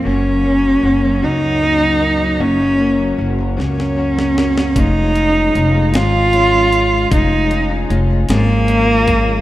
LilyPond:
<<
  \new Staff \with { instrumentName = "Cello" } { \time 6/8 \key des \major \tempo 4. = 51 des'4. ees'4. | des'4 r8 des'4. | ees'4. f'4. | ees'4 r8 bes4. | }
  \new Staff \with { instrumentName = "Clean electric guitar" } { \time 6/8 \key des \major <ges, des ges bes des' ges'>8 <ges bes des' ges'>8 <ges bes des' ges'>8 <ges, des ges bes des' ges'>8 <ges bes des' ges'>8 <ges bes des' ges'>8 | <ges, des ges bes des' ges'>8 <ges bes des' ges'>8 <ges bes des' ges'>8 <ges, des ges bes des' ges'>8 <ges bes des' ges'>8 <ges bes des' ges'>8 | <f aes des' f'>8 <aes des' f'>8 <f aes des' f'>8 <f aes des' f'>8 <f aes des' f'>8 <aes des'>8 | <f aes des' f'>8 <aes des' f'>8 <f aes des' f'>8 <f aes des' f'>8 <f aes des' f'>8 <aes des' f'>8 | }
  \new Staff \with { instrumentName = "Steel-string acoustic guitar" } { \clef bass \time 6/8 \key des \major <ges, des'>16 ges16 bes16 ges16 bes16 ges16 <ges, des'>16 ges16 bes16 ges16 bes16 ges16 | <ges, des'>16 ges16 bes16 ges16 bes16 ges16 <ges, des'>16 ges16 bes16 ges16 bes16 ges16 | <f f'>16 aes16 des'16 aes16 des'16 aes16 <f f'>16 aes16 des'16 aes16 des'16 aes16 | <f f'>16 aes16 des'16 aes16 des'16 aes16 <f f'>16 aes16 des'16 aes16 des'16 aes16 | }
  \new Staff \with { instrumentName = "Upright bass" } { \clef bass \time 6/8 \key des \major ges,,4 ges,,8 des,4. | ges,,4 ges,,8 des,4. | f,,4 f,,8 aes,,4. | f,,4 f,,8 aes,,4. | }
  \new DrumStaff \with { instrumentName = "Drums" } \drummode { \time 6/8 r4. r4. | r4. sn16 sn8 sn16 sn16 sn16 | <hh bd>8 hh8 hh8 <hh sn>8 hh8 hh8 | <hh bd>8 hh8 hh8 <hh sn>8 hh8 <hh bd>8 | }
>>